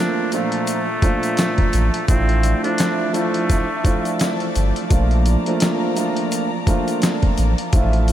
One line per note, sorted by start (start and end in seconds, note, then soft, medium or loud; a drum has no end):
0.00 0.28 F3 loud
0.00 8.12 F3 medium
0.00 0.28 A3 medium
0.00 0.29 A#3 medium
0.00 0.29 D4 medium
0.00 0.29 F4 loud
0.00 8.12 D5 medium
0.00 8.12 A5 medium
0.00 2.05 A#5 medium
0.32 0.83 A#2 medium
0.32 0.83 F3 loud
0.32 0.83 A3 medium
0.32 2.05 A3 medium
0.32 0.84 D4 medium
0.32 0.84 F4 medium
0.32 closed hi-hat medium
0.32 shaker medium
0.52 closed hi-hat medium
0.67 closed hi-hat medium
0.67 shaker medium
1.02 1.86 A#2 medium
1.02 1.85 F3 medium
1.02 1.85 A3 medium
1.02 1.86 D4 medium
1.02 1.86 F4 loud
1.02 kick medium
1.02 closed hi-hat medium
1.02 shaker soft
1.23 closed hi-hat soft
1.23 shaker soft
1.37 snare loud
1.37 clap medium
1.37 closed hi-hat medium
1.37 shaker medium
1.58 kick medium
1.58 closed hi-hat soft
1.73 1.90 A1 medium
1.73 closed hi-hat medium
1.73 shaker medium
1.94 closed hi-hat medium
2.08 2.54 A1 loud
2.08 2.59 F3 medium
2.08 2.59 A3 medium
2.08 2.61 C4 loud
2.08 2.60 D4 medium
2.08 2.60 E4 medium
2.08 2.60 F4 loud
2.08 4.87 E5 medium
2.08 kick loud
2.08 closed hi-hat loud
2.08 shaker medium
2.29 closed hi-hat soft
2.43 closed hi-hat medium
2.43 shaker soft
2.63 3.10 F3 medium
2.63 3.10 A3 medium
2.63 3.11 D4 medium
2.63 3.11 E4 medium
2.63 3.11 F4 medium
2.63 closed hi-hat medium
2.78 snare loud
2.78 clap medium
2.78 closed hi-hat loud
2.78 shaker medium
3.12 3.64 F3 medium
3.12 3.64 A3 medium
3.12 4.17 A3 medium
3.12 3.65 D4 medium
3.12 3.65 E4 medium
3.12 3.65 F4 medium
3.12 closed hi-hat medium
3.12 shaker medium
3.34 closed hi-hat medium
3.50 kick medium
3.50 snare soft
3.50 closed hi-hat medium
3.50 shaker medium
3.84 4.83 F3 medium
3.84 4.83 A3 medium
3.84 4.84 D4 medium
3.84 4.84 E4 medium
3.84 4.84 F4 loud
3.84 kick medium
3.84 closed hi-hat medium
3.84 shaker medium
4.05 closed hi-hat soft
4.05 shaker soft
4.19 snare loud
4.19 clap medium
4.19 closed hi-hat medium
4.19 shaker medium
4.40 closed hi-hat soft
4.55 4.73 G1 medium
4.55 closed hi-hat medium
4.55 shaker medium
4.76 closed hi-hat medium
4.89 5.37 A#1 loud
4.89 5.41 F3 medium
4.89 5.41 A3 medium
4.89 5.41 A#3 medium
4.89 5.42 D4 medium
4.89 5.42 F4 loud
4.89 7.70 A#5 medium
4.89 kick loud
4.89 closed hi-hat loud
4.89 shaker medium
5.11 closed hi-hat soft
5.26 closed hi-hat medium
5.26 shaker soft
5.46 5.93 F3 loud
5.46 5.93 A3 medium
5.46 5.93 A#3 medium
5.46 5.94 D4 medium
5.46 5.94 F4 loud
5.46 closed hi-hat medium
5.60 snare loud
5.60 clap medium
5.60 closed hi-hat loud
5.60 shaker medium
5.96 6.47 F3 loud
5.96 6.48 A3 medium
5.96 6.48 A#3 medium
5.96 6.48 D4 medium
5.96 6.48 F4 loud
5.96 closed hi-hat medium
5.96 shaker medium
6.17 closed hi-hat medium
6.32 closed hi-hat medium
6.32 shaker medium
6.67 7.50 F3 medium
6.67 7.50 A3 medium
6.67 7.50 A#3 medium
6.67 7.51 D4 medium
6.67 7.51 F4 loud
6.67 kick medium
6.67 closed hi-hat medium
6.67 shaker medium
6.88 closed hi-hat soft
6.88 shaker soft
7.02 snare loud
7.02 clap medium
7.02 closed hi-hat medium
7.02 shaker medium
7.23 kick loud
7.23 closed hi-hat soft
7.38 7.55 A1 medium
7.38 closed hi-hat medium
7.38 shaker medium
7.58 closed hi-hat medium
7.73 8.12 A1 loud
7.73 8.12 F3 medium
7.73 8.12 A3 medium
7.73 8.12 D4 medium
7.73 8.12 E4 medium
7.73 8.12 F4 loud
7.73 8.12 E5 medium
7.73 kick loud
7.73 closed hi-hat loud
7.73 shaker medium
7.93 closed hi-hat soft
8.08 closed hi-hat medium
8.08 shaker medium